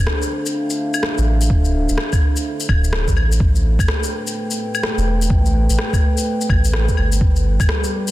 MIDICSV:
0, 0, Header, 1, 4, 480
1, 0, Start_track
1, 0, Tempo, 476190
1, 1509, Time_signature, 4, 2, 24, 8
1, 8176, End_track
2, 0, Start_track
2, 0, Title_t, "Analog synth pad"
2, 0, Program_c, 0, 89
2, 0, Note_on_c, 0, 62, 88
2, 0, Note_on_c, 0, 69, 81
2, 0, Note_on_c, 0, 72, 66
2, 0, Note_on_c, 0, 79, 72
2, 214, Note_on_c, 0, 77, 76
2, 260, Note_on_c, 0, 76, 83
2, 642, Note_off_c, 0, 79, 0
2, 3422, Note_on_c, 0, 57, 81
2, 3432, Note_off_c, 0, 77, 0
2, 3608, Note_on_c, 0, 79, 74
2, 3692, Note_on_c, 0, 71, 75
2, 4065, Note_off_c, 0, 76, 0
2, 4356, Note_off_c, 0, 62, 0
2, 7266, Note_off_c, 0, 57, 0
2, 7271, Note_off_c, 0, 72, 0
2, 7276, Note_on_c, 0, 55, 78
2, 7437, Note_on_c, 0, 67, 82
2, 8176, Note_off_c, 0, 55, 0
2, 8176, Note_off_c, 0, 67, 0
2, 8176, Note_off_c, 0, 69, 0
2, 8176, Note_off_c, 0, 71, 0
2, 8176, Note_off_c, 0, 79, 0
2, 8176, End_track
3, 0, Start_track
3, 0, Title_t, "Sub bass"
3, 0, Program_c, 1, 38
3, 1189, Note_on_c, 1, 33, 95
3, 1502, Note_off_c, 1, 33, 0
3, 1510, Note_on_c, 1, 26, 97
3, 1882, Note_off_c, 1, 26, 0
3, 1908, Note_on_c, 1, 26, 90
3, 1986, Note_off_c, 1, 26, 0
3, 2712, Note_on_c, 1, 26, 82
3, 3083, Note_off_c, 1, 26, 0
3, 3104, Note_on_c, 1, 33, 88
3, 3419, Note_off_c, 1, 33, 0
3, 3430, Note_on_c, 1, 33, 93
3, 3802, Note_off_c, 1, 33, 0
3, 3824, Note_on_c, 1, 33, 94
3, 3903, Note_off_c, 1, 33, 0
3, 5014, Note_on_c, 1, 28, 93
3, 5334, Note_off_c, 1, 28, 0
3, 5346, Note_on_c, 1, 33, 94
3, 5720, Note_off_c, 1, 33, 0
3, 5739, Note_on_c, 1, 33, 93
3, 5821, Note_off_c, 1, 33, 0
3, 6547, Note_on_c, 1, 33, 88
3, 6921, Note_off_c, 1, 33, 0
3, 7030, Note_on_c, 1, 31, 81
3, 7255, Note_off_c, 1, 31, 0
3, 7272, Note_on_c, 1, 31, 92
3, 7643, Note_off_c, 1, 31, 0
3, 7659, Note_on_c, 1, 31, 91
3, 7741, Note_off_c, 1, 31, 0
3, 8176, End_track
4, 0, Start_track
4, 0, Title_t, "Drums"
4, 67, Note_on_c, 9, 37, 101
4, 168, Note_off_c, 9, 37, 0
4, 223, Note_on_c, 9, 82, 45
4, 324, Note_off_c, 9, 82, 0
4, 464, Note_on_c, 9, 82, 55
4, 565, Note_off_c, 9, 82, 0
4, 706, Note_on_c, 9, 82, 42
4, 806, Note_off_c, 9, 82, 0
4, 947, Note_on_c, 9, 75, 61
4, 947, Note_on_c, 9, 82, 54
4, 1037, Note_on_c, 9, 37, 103
4, 1048, Note_off_c, 9, 75, 0
4, 1048, Note_off_c, 9, 82, 0
4, 1138, Note_off_c, 9, 37, 0
4, 1189, Note_on_c, 9, 82, 30
4, 1290, Note_off_c, 9, 82, 0
4, 1423, Note_on_c, 9, 82, 55
4, 1512, Note_on_c, 9, 36, 121
4, 1524, Note_off_c, 9, 82, 0
4, 1612, Note_off_c, 9, 36, 0
4, 1660, Note_on_c, 9, 82, 31
4, 1761, Note_off_c, 9, 82, 0
4, 1904, Note_on_c, 9, 82, 55
4, 1992, Note_on_c, 9, 37, 100
4, 2005, Note_off_c, 9, 82, 0
4, 2092, Note_off_c, 9, 37, 0
4, 2143, Note_on_c, 9, 75, 36
4, 2143, Note_on_c, 9, 82, 46
4, 2144, Note_on_c, 9, 36, 110
4, 2244, Note_off_c, 9, 75, 0
4, 2244, Note_off_c, 9, 82, 0
4, 2245, Note_off_c, 9, 36, 0
4, 2383, Note_on_c, 9, 82, 55
4, 2484, Note_off_c, 9, 82, 0
4, 2623, Note_on_c, 9, 82, 43
4, 2711, Note_on_c, 9, 36, 101
4, 2711, Note_on_c, 9, 75, 53
4, 2724, Note_off_c, 9, 82, 0
4, 2812, Note_off_c, 9, 36, 0
4, 2812, Note_off_c, 9, 75, 0
4, 2864, Note_on_c, 9, 82, 56
4, 2950, Note_on_c, 9, 37, 108
4, 2965, Note_off_c, 9, 82, 0
4, 3051, Note_off_c, 9, 37, 0
4, 3101, Note_on_c, 9, 36, 58
4, 3105, Note_on_c, 9, 82, 30
4, 3192, Note_on_c, 9, 75, 36
4, 3202, Note_off_c, 9, 36, 0
4, 3205, Note_off_c, 9, 82, 0
4, 3293, Note_off_c, 9, 75, 0
4, 3346, Note_on_c, 9, 82, 56
4, 3430, Note_on_c, 9, 36, 118
4, 3447, Note_off_c, 9, 82, 0
4, 3530, Note_off_c, 9, 36, 0
4, 3585, Note_on_c, 9, 82, 29
4, 3686, Note_off_c, 9, 82, 0
4, 3821, Note_on_c, 9, 36, 110
4, 3829, Note_on_c, 9, 75, 60
4, 3829, Note_on_c, 9, 82, 52
4, 3914, Note_on_c, 9, 37, 106
4, 3922, Note_off_c, 9, 36, 0
4, 3929, Note_off_c, 9, 75, 0
4, 3929, Note_off_c, 9, 82, 0
4, 4015, Note_off_c, 9, 37, 0
4, 4068, Note_on_c, 9, 82, 44
4, 4169, Note_off_c, 9, 82, 0
4, 4305, Note_on_c, 9, 82, 56
4, 4405, Note_off_c, 9, 82, 0
4, 4546, Note_on_c, 9, 82, 43
4, 4647, Note_off_c, 9, 82, 0
4, 4785, Note_on_c, 9, 75, 62
4, 4785, Note_on_c, 9, 82, 54
4, 4873, Note_on_c, 9, 37, 112
4, 4886, Note_off_c, 9, 75, 0
4, 4886, Note_off_c, 9, 82, 0
4, 4974, Note_off_c, 9, 37, 0
4, 5023, Note_on_c, 9, 82, 30
4, 5124, Note_off_c, 9, 82, 0
4, 5260, Note_on_c, 9, 82, 52
4, 5345, Note_on_c, 9, 36, 115
4, 5361, Note_off_c, 9, 82, 0
4, 5446, Note_off_c, 9, 36, 0
4, 5503, Note_on_c, 9, 82, 29
4, 5604, Note_off_c, 9, 82, 0
4, 5744, Note_on_c, 9, 82, 51
4, 5832, Note_on_c, 9, 37, 103
4, 5845, Note_off_c, 9, 82, 0
4, 5933, Note_off_c, 9, 37, 0
4, 5978, Note_on_c, 9, 36, 107
4, 5985, Note_on_c, 9, 75, 33
4, 5985, Note_on_c, 9, 82, 43
4, 6079, Note_off_c, 9, 36, 0
4, 6086, Note_off_c, 9, 75, 0
4, 6086, Note_off_c, 9, 82, 0
4, 6226, Note_on_c, 9, 82, 55
4, 6327, Note_off_c, 9, 82, 0
4, 6464, Note_on_c, 9, 82, 42
4, 6548, Note_on_c, 9, 36, 103
4, 6551, Note_on_c, 9, 75, 48
4, 6564, Note_off_c, 9, 82, 0
4, 6648, Note_off_c, 9, 36, 0
4, 6652, Note_off_c, 9, 75, 0
4, 6702, Note_on_c, 9, 82, 51
4, 6789, Note_on_c, 9, 37, 103
4, 6803, Note_off_c, 9, 82, 0
4, 6890, Note_off_c, 9, 37, 0
4, 6940, Note_on_c, 9, 82, 30
4, 6941, Note_on_c, 9, 36, 61
4, 7028, Note_on_c, 9, 75, 32
4, 7041, Note_off_c, 9, 36, 0
4, 7041, Note_off_c, 9, 82, 0
4, 7129, Note_off_c, 9, 75, 0
4, 7181, Note_on_c, 9, 82, 53
4, 7269, Note_on_c, 9, 36, 111
4, 7282, Note_off_c, 9, 82, 0
4, 7369, Note_off_c, 9, 36, 0
4, 7421, Note_on_c, 9, 82, 27
4, 7522, Note_off_c, 9, 82, 0
4, 7659, Note_on_c, 9, 36, 103
4, 7664, Note_on_c, 9, 75, 56
4, 7664, Note_on_c, 9, 82, 52
4, 7750, Note_on_c, 9, 37, 96
4, 7760, Note_off_c, 9, 36, 0
4, 7765, Note_off_c, 9, 75, 0
4, 7765, Note_off_c, 9, 82, 0
4, 7851, Note_off_c, 9, 37, 0
4, 7902, Note_on_c, 9, 82, 42
4, 8003, Note_off_c, 9, 82, 0
4, 8141, Note_on_c, 9, 82, 50
4, 8176, Note_off_c, 9, 82, 0
4, 8176, End_track
0, 0, End_of_file